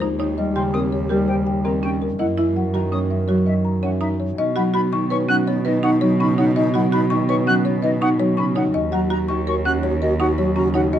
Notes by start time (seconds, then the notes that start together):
0.00 D#2 A#3 D#4 G4 C5 A#5
0.19 D#3 D#4 C#5
0.38 G3 D#5
0.55 C#3 G4 G5 C6
0.73 A#3 C4 A#4 D#6
0.92 C#5
1.09 G3 G4 A#4
1.27 C#3 C5 G5
1.47 G5
1.64 D#3 C4 A#4 A#5
1.83 C#4 G5
2.02 A#4
2.18 F#2 A#3 E4 A#4 D#5 F#5
2.37 E3 E4 E5
2.55 F#3 F#5
2.74 D#3 F#4 A#5
2.92 A#3 C#4 C#5 D#6
3.10 E5
3.28 F#3 F#4 C#5
3.46 D#3 D#5 E5
3.65 A#5
3.83 E3 C#4 C#5 F#5
4.01 D#4 E5 A#5
4.20 C#5
4.38 B2 C#4 D#4 D#5
4.56 F#3 D#4 F#4 F#5 B5
4.74 B3 D#4 F#4 B5
4.92 D#3 D#4 C#6
5.10 C#4 D#4 B4 C#5 C#6
5.28 F#3 C#4 D#4 F#5 F#6
5.47 B3 D#4 C#5
5.65 D#3 D#4 B4 D#5
5.83 C#4 D#4 F#5 C#6
6.01 F#3 D#4 C#5
6.19 C#3 C#4 D#4 B5 C#6
6.38 D#3 D#4 C#5 F#5
6.56 C#4 D#4 D#5
6.74 F#3 D#4 F#4 F#5 B5
6.92 B3 D#4 F#4 B5
7.10 D#3 D#4 C#6
7.28 C#4 D#4 B4 C#5 C#6
7.47 F#3 C#4 D#4 F#5 F#6
7.65 B3 D#4 C#5
7.82 D#3 D#4 B4 D#5
8.02 C#4 D#4 F#5 C#6
8.19 F#3 D#4 C#5
8.37 C#3 C#4 D#4 B5 C#6
8.56 D#3 D#4 C#5 F#5
8.74 D#2 C#4 F#4 D#5
8.92 F#3 F#4 F#5 A#5
9.10 A#3 F#4 A#5
9.28 D#3 F#4 C#6
9.47 C#4 F#4 A#4 C#5 C#6
9.65 C#4 F#4 F#5 F#6
9.83 A#3 F#4 C#5
10.02 D#3 F#4 A#4 D#5
10.19 C#4 D#4 F#4 F#5 C#6
10.37 F#3 F#4 C#5
10.56 C#3 C#4 F#4 A#5 C#6
10.74 D#3 D#4 F#4 C#5 F#5
10.92 C#4 F#4 D#5